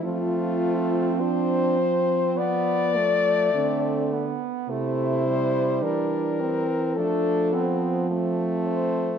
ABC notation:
X:1
M:4/4
L:1/16
Q:1/4=52
K:Flyd
V:1 name="French horn"
F4 c4 d6- d z | c4 _B4 A4 z2 c2 |]
V:2 name="French horn"
A,4 D2 C2 B,2 A,4- A, z | E4 D2 C2 D2 C2 A,4 |]
V:3 name="French horn"
C8 B,2 A,2 C2 B,2 | A,2 G,4- G, z A,2 B,2 C4 |]
V:4 name="French horn" clef=bass
F,12 D,3 z | C,4 E,4 F,8 |]